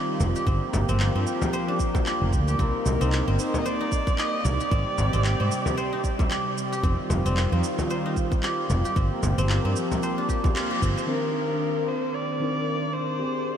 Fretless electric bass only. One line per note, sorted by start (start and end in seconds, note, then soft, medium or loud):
0.20 0.32 F1 medium
0.46 0.59 G1 loud
0.74 0.85 G1 medium
0.89 1.09 G1 medium
1.15 1.24 G2 medium
2.22 2.34 F1 medium
2.33 2.54 D2 loud
2.59 2.71 C2 loud
2.86 2.98 C2 medium
3.01 3.21 C2 medium
3.28 3.36 G1 medium
4.45 4.57 C2 medium
4.71 4.83 G#1 loud
4.98 5.10 G#1 medium
5.14 5.33 G#1 medium
5.40 5.49 G#2 medium
6.83 6.96 F1 loud
7.10 7.22 F1 medium
7.26 7.45 F1 medium
7.52 7.61 F2 medium
8.70 8.82 F1 medium
8.96 9.08 G1 loud
9.23 9.35 G1 medium
9.38 9.58 G1 medium
9.65 9.74 G2 medium
10.82 10.94 G1 medium